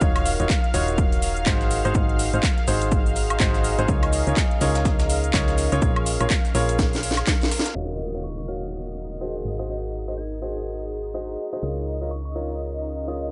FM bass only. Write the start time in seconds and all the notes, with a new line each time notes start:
0.01 D#1
0.40 D#1
0.74 D#1
1.46 G#1
1.85 G#1
1.95 G#1
2.33 G#1
2.68 G#1
3.40 G#1
3.79 G#1
3.88 C#2
4.27 C#2
4.61 C#2
5.34 C#2
5.72 C#2
5.82 A#1
6.21 A#1
6.55 A#1
7.76 D#1
9.45 G#1
11.63 C#2